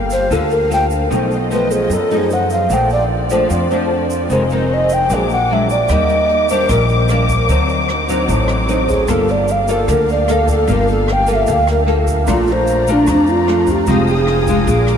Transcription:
Already playing: upright bass G1, nylon-string guitar G3 A#3 F4 A4, string section A#3 G4 A4 F5
0.10 ocarina C5, shaker
0.30 upright bass D2, nylon-string guitar D3 A#3 F4 A4, ocarina A4, shaker
0.50 ocarina A#4, shaker
0.70 nylon-string guitar A#3 F4 A4, ocarina G5, shaker
0.90 shaker
1.10 upright bass B1, nylon-string guitar B2 F3 A3 D#4, string section B3 F4 D#5, shaker
1.31 shaker
1.51 nylon-string guitar F3 A3 D#4, ocarina B4, shaker
1.71 ocarina G#4, shaker
1.90 upright bass F#2, nylon-string guitar F#2, ocarina A4, shaker
2.11 nylon-string guitar F3 A3 D#4, ocarina A4, shaker
2.17 ocarina G#4
2.30 ocarina F#5, shaker
2.50 ocarina F5, shaker
2.70 upright bass A#1, nylon-string guitar A#2 F3 A3 D4, string section F4 D5, ocarina G5, shaker
2.90 ocarina D5, shaker
3.30 nylon-string guitar F3 A3 D4, shaker
3.49 nylon-string guitar F2, upright bass F2, shaker
3.70 nylon-string guitar F3 A3 D4, shaker
4.10 shaker
4.30 upright bass F1, nylon-string guitar F2 D#3 G#3 C4, string section C4 G#4 D#5, shaker
4.50 nylon-string guitar D#3 G#3 C4, ocarina C5, shaker
4.74 ocarina D#5
4.89 shaker
4.93 ocarina G5
5.09 upright bass A#1, nylon-string guitar A#2 F#3 G#3 D4, string section A#3 F#4 D6, shaker
5.14 ocarina G#4
5.29 ocarina F#5, shaker
5.50 nylon-string guitar F#3 G#3 D4, ocarina E5
5.69 ocarina D5, shaker
5.88 upright bass D#2, nylon-string guitar D#3 G3 A#3, string section G4, ocarina D#5, kick, cross-stick, closed hi-hat, shaker
6.09 closed hi-hat, shaker
6.29 closed hi-hat
6.49 nylon-string guitar G3 A#3 D4, ocarina C5, closed hi-hat, shaker
6.69 upright bass A#1, nylon-string guitar A#2, ocarina A#4, kick, cross-stick, closed hi-hat, shaker
6.89 closed hi-hat, shaker
7.08 nylon-string guitar G3 A#3 D4, cross-stick, closed hi-hat, shaker
7.29 kick, closed hi-hat, shaker
7.48 upright bass D2, nylon-string guitar D3 F#3 C4 D#4, string section C4 D#4 F#4, kick, closed hi-hat, shaker
7.69 closed hi-hat, shaker
7.89 cross-stick, closed hi-hat
8.09 nylon-string guitar F#3 C4 D#4, closed hi-hat, shaker
8.28 upright bass A1, nylon-string guitar A2, kick, closed hi-hat, shaker
8.48 cross-stick, closed hi-hat, shaker
8.68 nylon-string guitar F#3 C4 D#4, closed hi-hat, shaker
8.88 ocarina G#4, kick, closed hi-hat, shaker
9.07 upright bass G1, nylon-string guitar G3 A#3 F4 A4, string section A#3 G4 A4 F5, ocarina A4, kick, cross-stick, closed hi-hat, shaker
9.28 ocarina D5, closed hi-hat, shaker
9.48 ocarina F5, closed hi-hat, shaker
9.68 nylon-string guitar A#3 F4 A4, ocarina A4, closed hi-hat, shaker
9.88 upright bass D2, nylon-string guitar D3, ocarina A#4, kick, cross-stick, closed hi-hat, shaker
10.08 ocarina D5, closed hi-hat, shaker
10.28 nylon-string guitar A#3 F4 A4, ocarina F5, cross-stick, closed hi-hat, shaker
10.48 ocarina A4, kick, closed hi-hat, shaker
10.68 upright bass G1, nylon-string guitar G3 A#3 F4 A4, ocarina A#4, kick, closed hi-hat, shaker
10.88 ocarina A4, closed hi-hat, shaker
11.08 cross-stick, closed hi-hat
11.12 ocarina G5
11.27 nylon-string guitar A#3 F4 A4, closed hi-hat, shaker
11.31 ocarina F5
11.36 ocarina E5
11.47 upright bass D2, nylon-string guitar D3, kick, closed hi-hat, shaker
11.52 ocarina F5
11.67 ocarina A#4, cross-stick, closed hi-hat, shaker
11.86 nylon-string guitar A#3 F4 A4, closed hi-hat
12.07 kick, closed hi-hat, shaker
12.26 upright bass A#1, nylon-string guitar A#2 A3 D4 F4, string section A3 D5 F5 A#5, kick, cross-stick, closed hi-hat, shaker
12.32 ocarina F4
12.47 closed hi-hat, shaker
12.52 ocarina C5
12.67 closed hi-hat, shaker
12.87 nylon-string guitar A3 D4 F4, closed hi-hat, shaker
12.92 ocarina D4
13.07 upright bass F2, nylon-string guitar F3, kick, cross-stick, closed hi-hat, shaker
13.12 ocarina D4
13.27 closed hi-hat, shaker
13.31 ocarina F4
13.47 nylon-string guitar A3 D4 F4, cross-stick, closed hi-hat
13.67 kick, closed hi-hat, shaker
13.71 ocarina G4
13.87 upright bass F1, nylon-string guitar F3 G#3 D#4, ocarina G4, string section G#4 G5 D#6, kick, closed hi-hat, shaker
14.07 ocarina G#4, closed hi-hat, shaker
14.27 cross-stick, closed hi-hat
14.47 nylon-string guitar G#3 D4 F4, kick, closed hi-hat, shaker
14.67 upright bass A#1, nylon-string guitar A#2, string section A#5 D6, kick, closed hi-hat, shaker
14.87 cross-stick, closed hi-hat, shaker

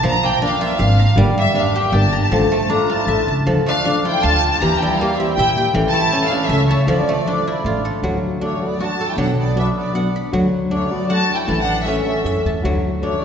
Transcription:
Already playing: guzheng A3 D4 A4 A5
0.02 upright bass A#1, nylon-string guitar A#2 D3 F3 A#3 D4 A#4, guzheng F3, violin section A#5
0.23 guzheng A#3, violin section G5
0.40 nylon-string guitar F3 A#3 D4 A#4, guzheng D4
0.45 violin section F5
0.60 nylon-string guitar F3 A#3 D4 A#4, guzheng F4, violin section E5
0.78 upright bass G#1, nylon-string guitar F3 A#3 D4 A#4, guzheng F5, violin section F5
0.99 guzheng A#5
1.16 upright bass G1, nylon-string guitar G2 D3 G3 A#3 D4 A#4, guzheng G3
1.38 guzheng A#3, violin section E5
1.52 nylon-string guitar G3 A#3 D4 A#4, guzheng D4
1.57 violin section F5
1.75 guzheng G4, violin section G5
1.91 upright bass G1, nylon-string guitar G3 A#3 D4 A#4, guzheng G5, violin section A5
2.11 nylon-string guitar G3 A#3 D4 A#4, guzheng A#5
2.22 violin section A5
2.31 upright bass A1, nylon-string guitar A2 D3 A3 D4 F4 A4, guzheng F3
2.52 guzheng A3
2.68 nylon-string guitar A3 D4 F4 A4, guzheng D4, violin section A#5
2.74 trumpet F4
2.89 nylon-string guitar A3 D4 F4, guzheng F4, violin section A5
2.94 trumpet E4
3.07 upright bass A1, nylon-string guitar A3 C#4 E4 A4, guzheng E5
3.28 upright bass C#2, guzheng A5
3.45 upright bass D2, nylon-string guitar D3 F3 A3 D4 A4, guzheng F3
3.66 guzheng A3, trumpet D4, violin section F5
3.84 nylon-string guitar F3 A3 D4 A4, guzheng D4
4.03 nylon-string guitar F3 A3 D4 A4, trumpet E4, guzheng F4, violin section G5
4.22 upright bass D2, nylon-string guitar F3 A3 D4 A4, trumpet F4, guzheng F5, violin section A5
4.44 guzheng A5
4.51 trumpet F4, violin section A5
4.60 upright bass E2, nylon-string guitar E3 A#3 E4 G4, guzheng E3, trumpet G4, violin section A#5
4.78 violin section G5
4.82 guzheng G3, trumpet E4
4.94 violin section F5
5.00 nylon-string guitar E3 A#3 E4 G4, trumpet A#3, guzheng A#3
5.14 nylon-string guitar E3, trumpet C4, violin section E5
5.19 nylon-string guitar A#3 E4 G4, guzheng E4
5.32 nylon-string guitar E3 A#3 E4, trumpet E4, violin section G5
5.37 upright bass A#2, nylon-string guitar G4, guzheng E5
5.56 nylon-string guitar E3 A#3 E4 G4, guzheng G5
5.73 upright bass A1, nylon-string guitar A2 E3 A3 C#4 E4 A4, guzheng E3
5.89 trumpet E4, violin section A5
5.94 guzheng A3
6.12 nylon-string guitar A3 C#4 E4 A4, guzheng C#4
6.26 trumpet D4, violin section F5
6.31 nylon-string guitar A3 C#4 E4 A4, guzheng E4
6.46 upright bass C#2, nylon-string guitar A3 C#4 E4 A4, trumpet C#4, violin section E5, guzheng E5
6.66 trumpet A3, violin section C#5
6.71 guzheng A5
6.86 upright bass D2, nylon-string guitar D3 F3 A3 E4 A4, guzheng F3, trumpet A3, violin section D5
7.09 guzheng A3
7.25 nylon-string guitar F3 A3 E4 A4, guzheng D4
7.47 guzheng E4
7.63 upright bass A1, nylon-string guitar F3 A3 E4 A4, guzheng F4
7.85 guzheng A4
8.02 upright bass D2, nylon-string guitar D3 E3 A3 D4 F#4, guzheng F#3
8.40 nylon-string guitar E3 A3 D4 F#4, guzheng D4
8.44 trumpet A3, violin section C#5
8.60 nylon-string guitar E3 A3 D4 F#4
8.66 trumpet B3, violin section D5
8.78 nylon-string guitar E3 A3 D4 F#4, guzheng F#4, violin section A5
8.83 trumpet F#4
9.01 guzheng A4
9.10 trumpet E4, violin section G5
9.16 upright bass B1, nylon-string guitar B2 F#3 B3 D4 F#4, guzheng F#3, trumpet D4
9.21 violin section F#5
9.38 trumpet B3, violin section D5
9.55 nylon-string guitar F#3 B3 D4 F#4, trumpet B3, guzheng D4
9.59 violin section E5
9.76 trumpet B3, violin section D5
9.93 nylon-string guitar F#3 B3 D4 F#4, guzheng F#5
10.16 guzheng B5
10.31 upright bass D2, nylon-string guitar D3 F#3 A3 D4 F#4, guzheng F#3
10.69 nylon-string guitar F#3 A3 D4 F#4, guzheng D4, violin section C#5
10.75 trumpet A3
10.89 nylon-string guitar F#3 A3 D4 F#4, trumpet B3, violin section D5
11.07 nylon-string guitar F#3 A3 D4 F#4, trumpet F#4, guzheng F#5, violin section A5
11.30 guzheng A5
11.35 trumpet E4, violin section G5
11.45 upright bass A1, nylon-string guitar A2 E3 A3 C#4 E4 A4, guzheng E3, trumpet E4, violin section A5
11.61 trumpet D4, violin section F#5
11.83 nylon-string guitar A3 C#4 E4 A4, trumpet C#4, violin section E5
11.88 guzheng C#4
12.04 nylon-string guitar A3 C#4 E4 A4, trumpet C#4, violin section E5
12.23 upright bass F#2, nylon-string guitar A3 C#4 E4 A4, guzheng E5
12.45 upright bass E2, nylon-string guitar A3 C#4 E4 A4, guzheng A5
12.62 upright bass D2, nylon-string guitar D3 E3 A3 E4 F#4, guzheng F#3
13.01 nylon-string guitar E3 A3 E4 F#4, guzheng D4, violin section C#5
13.05 trumpet A3
13.20 nylon-string guitar E3 A3 E4

